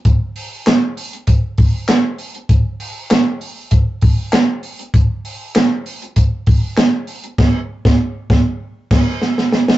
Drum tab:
CC |----------------|----------------|----------------|x---------x-----|
HH |x-o-x-oxx-o-x-ox|x-o-x-o-x-o-x-ox|x-o-x-oxx-o-x-ox|----------------|
CP |----x-------x---|----x-------x---|----x-------x---|----------------|
SD |----o-------o---|----o-------o---|----o-------o---|o--o--o---o-oooo|
BD |o-------o-o-----|o-------o-o-----|o-------o-o-----|o--o--o---o-----|